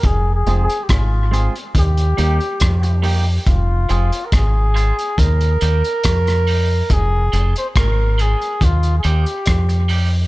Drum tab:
HH |x-xxx-xxxxxxxxo-|x-xxx-xxxxxxxxo-|x-xxx-xxxxxxxxo-|
SD |----r-------r---|----r-------rr--|----r-------r---|
BD |o---o---o---o---|o---o---o---o---|o---o---o---o---|